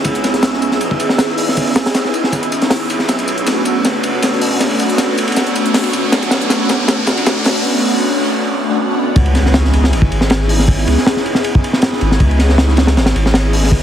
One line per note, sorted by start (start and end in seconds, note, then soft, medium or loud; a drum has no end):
0.00 7.65 E6 medium
0.00 riser medium
0.04 0.82 C#2 loud
0.04 0.98 B3 loud
0.04 0.98 C#4 medium
0.04 0.98 D#4 medium
0.04 0.98 E4 medium
0.04 0.98 G#4 loud
0.04 kick loud
0.04 ride medium
0.04 tambourine medium
0.15 closed hi-hat soft
0.15 ride soft
0.24 snare soft
0.24 ride medium
0.24 tambourine medium
0.34 snare soft
0.34 closed hi-hat soft
0.43 snare loud
0.43 ride medium
0.43 tambourine medium
0.53 snare soft
0.62 ride medium
0.62 tambourine medium
0.71 snare soft
0.81 0.98 G#1 medium
0.81 ride medium
0.81 tambourine medium
0.91 kick medium
0.99 1.75 G#1 loud
0.99 1.54 B3 loud
0.99 1.54 C#4 medium
0.99 1.55 D#4 medium
0.99 1.55 E4 medium
0.99 1.54 G#4 loud
0.99 ride medium
0.99 tambourine medium
1.09 snare medium
1.18 snare loud
1.18 ride medium
1.18 tambourine medium
1.29 snare soft
1.38 open hi-hat medium
1.38 tambourine medium
1.49 snare soft
1.57 2.50 B3 loud
1.57 2.50 C#4 medium
1.57 2.50 D#4 medium
1.57 2.50 E4 medium
1.57 2.50 G#4 loud
1.57 kick loud
1.57 ride medium
1.57 tambourine medium
1.67 ride soft
1.76 1.85 C#2 medium
1.76 snare loud
1.76 ride medium
1.76 tambourine medium
1.86 snare loud
1.86 closed hi-hat soft
1.86 ride medium
1.94 snare loud
1.94 ride medium
1.94 tambourine medium
2.05 snare medium
2.14 ride medium
2.14 tambourine medium
2.24 snare medium
2.32 3.07 G#1 medium
2.32 kick loud
2.32 ride medium
2.32 tambourine medium
2.43 closed hi-hat soft
2.43 ride soft
2.52 ride medium
2.52 tambourine medium
2.62 2.69 B3 medium
2.62 2.69 C#4 medium
2.62 2.69 D#4 medium
2.62 2.69 E4 medium
2.62 2.69 G#4 loud
2.62 snare soft
2.62 closed hi-hat soft
2.70 3.07 B3 medium
2.70 3.07 C#4 medium
2.70 3.07 D#4 medium
2.70 3.07 E4 medium
2.70 3.07 G#4 loud
2.70 snare loud
2.70 open hi-hat medium
2.70 ride medium
2.90 ride medium
2.90 tambourine medium
2.99 snare soft
3.08 3.86 B1 loud
3.08 4.02 A3 loud
3.08 4.01 B3 medium
3.08 4.01 C#4 medium
3.08 4.01 D4 medium
3.08 4.01 F#4 loud
3.08 snare soft
3.08 ride medium
3.08 tambourine medium
3.19 closed hi-hat soft
3.19 ride soft
3.28 ride medium
3.28 tambourine medium
3.38 closed hi-hat soft
3.47 snare loud
3.47 snare soft
3.47 ride loud
3.47 tambourine medium
3.65 ride medium
3.65 tambourine medium
3.85 4.02 F#1 medium
3.85 snare medium
3.85 ride medium
3.85 tambourine medium
4.03 4.78 F#1 loud
4.03 4.59 A3 loud
4.03 4.58 B3 medium
4.03 4.58 C#4 medium
4.03 4.59 D4 medium
4.03 4.59 F#4 loud
4.03 ride medium
4.03 tambourine medium
4.23 snare loud
4.23 snare medium
4.23 ride medium
4.23 tambourine medium
4.33 snare soft
4.41 open hi-hat medium
4.41 tambourine medium
4.60 5.53 A3 loud
4.60 5.54 B3 medium
4.60 5.54 C#4 medium
4.60 5.54 D4 medium
4.60 5.54 F#4 loud
4.60 snare medium
4.60 ride medium
4.60 tambourine medium
4.71 ride soft
4.79 4.89 B1 medium
4.79 ride medium
4.79 tambourine medium
4.90 closed hi-hat soft
4.98 snare medium
4.98 snare loud
4.98 ride medium
4.98 tambourine medium
5.18 ride medium
5.18 tambourine medium
5.28 ride medium
5.32 ride medium
5.36 snare medium
5.36 ride medium
5.36 tambourine medium
5.47 closed hi-hat soft
5.55 6.10 A3 loud
5.55 6.10 B3 medium
5.55 6.11 C#4 medium
5.55 6.11 D4 medium
5.55 6.11 F#4 loud
5.55 ride medium
5.55 tambourine medium
5.66 closed hi-hat soft
5.74 snare medium
5.74 snare loud
5.74 open hi-hat medium
5.74 ride medium
5.83 ride medium
5.93 6.11 F#1 medium
5.93 ride medium
5.93 tambourine medium
6.12 6.90 B1 loud
6.12 7.05 A3 loud
6.12 7.05 B3 medium
6.12 7.05 C#4 loud
6.12 7.05 D4 medium
6.12 7.05 F#4 loud
6.12 snare medium
6.12 ride medium
6.12 tambourine medium
6.22 closed hi-hat soft
6.22 ride soft
6.31 snare medium
6.31 ride medium
6.31 tambourine medium
6.42 closed hi-hat soft
6.50 snare medium
6.50 snare loud
6.50 ride medium
6.50 tambourine medium
6.69 snare medium
6.69 ride medium
6.69 tambourine medium
6.88 7.06 F#1 loud
6.88 snare medium
6.88 ride medium
6.88 tambourine medium
7.07 7.64 F#1 loud
7.07 7.62 A3 loud
7.07 7.62 B3 medium
7.07 7.62 C#4 medium
7.07 7.62 D4 medium
7.07 7.62 F#4 loud
7.07 snare medium
7.07 ride medium
7.07 tambourine medium
7.17 ride medium
7.26 snare loud
7.26 ride medium
7.26 tambourine medium
7.37 snare soft
7.44 snare loud
7.44 snare medium
7.44 open hi-hat medium
7.44 tambourine medium
7.64 8.57 A3 loud
7.64 8.57 B3 medium
7.64 8.57 C#4 loud
7.64 8.57 D4 loud
7.64 8.57 F#4 loud
7.64 noise sweep medium
8.69 8.76 A3 medium
8.69 8.76 B3 medium
8.69 8.76 C#4 medium
8.69 8.76 D4 medium
8.69 8.76 F#4 loud
8.78 9.14 A3 loud
8.78 9.14 B3 medium
8.78 9.14 C#4 medium
8.78 9.14 D4 medium
8.78 9.14 F#4 loud
9.16 9.94 C#2 loud
9.16 10.09 B3 loud
9.16 10.09 C#4 medium
9.16 10.09 D#4 loud
9.16 10.09 E4 medium
9.16 10.09 G#4 loud
9.16 kick loud
9.16 ride medium
9.16 impact medium
9.26 ride soft
9.35 snare soft
9.35 ride medium
9.46 snare soft
9.54 snare loud
9.54 ride medium
9.65 snare soft
9.73 ride medium
9.84 snare medium
9.92 10.10 G#1 medium
9.92 ride medium
10.02 kick loud
10.11 10.86 G#1 loud
10.11 ride medium
10.21 10.28 B3 medium
10.21 10.28 C#4 medium
10.21 10.28 D#4 medium
10.21 10.28 E4 medium
10.21 10.28 G#4 loud
10.21 snare medium
10.30 10.66 B3 loud
10.30 10.66 C#4 medium
10.30 10.66 D#4 medium
10.30 10.66 E4 medium
10.30 10.66 G#4 loud
10.30 snare loud
10.30 ride medium
10.49 open hi-hat medium
10.59 snare soft
10.68 11.61 B3 loud
10.68 11.61 C#4 loud
10.68 11.61 D#4 medium
10.68 11.61 E4 medium
10.68 11.61 G#4 loud
10.68 kick loud
10.68 ride medium
10.79 ride soft
10.87 10.96 C#2 medium
10.87 ride medium
10.98 snare soft
11.07 snare loud
11.07 ride medium
11.17 snare medium
11.26 ride medium
11.35 snare medium
11.44 ride medium
11.55 kick loud
11.64 ride medium
11.73 11.80 B3 medium
11.73 11.80 C#4 medium
11.73 11.80 D#4 medium
11.73 11.80 E4 medium
11.73 11.80 G#4 loud
11.73 snare medium
11.82 12.18 B3 medium
11.82 12.18 C#4 medium
11.82 12.18 D#4 medium
11.82 12.18 E4 medium
11.82 12.18 G#4 loud
11.82 snare loud
11.82 ride medium
11.93 snare soft
12.01 12.19 G#1 medium
12.01 ride medium
12.12 snare soft
12.20 12.98 C#2 loud
12.20 13.13 B3 loud
12.20 13.13 C#4 medium
12.20 13.13 D#4 medium
12.20 13.13 E4 medium
12.20 13.13 G#4 loud
12.20 kick loud
12.20 ride medium
12.31 ride soft
12.39 snare soft
12.39 ride medium
12.49 snare soft
12.58 snare loud
12.58 ride medium
12.69 snare soft
12.77 snare loud
12.77 ride medium
12.87 snare loud
12.87 ride medium
12.96 13.13 G#1 medium
12.96 snare loud
12.96 ride medium
13.06 snare loud
13.06 ride medium
13.15 13.83 G#1 medium
13.15 ride medium
13.25 13.32 B3 medium
13.25 13.32 C#4 medium
13.25 13.32 D#4 medium
13.25 13.32 E4 medium
13.25 13.32 G#4 loud
13.25 snare medium
13.34 13.70 B3 medium
13.34 13.70 C#4 medium
13.34 13.70 D#4 medium
13.34 13.70 E4 medium
13.34 13.70 G#4 loud
13.34 snare loud
13.34 ride medium
13.53 open hi-hat medium
13.63 snare soft
13.72 13.83 B3 loud
13.72 13.83 C#4 medium
13.72 13.83 D#4 medium
13.72 13.83 E4 medium
13.72 13.83 G#4 loud
13.72 kick loud
13.72 ride medium